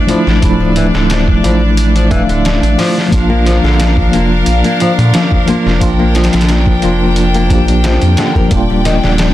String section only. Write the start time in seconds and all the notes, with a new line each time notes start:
Already playing: D4 D5
3.13 D4 A#4 F5
5.81 G5
8.52 D5 G5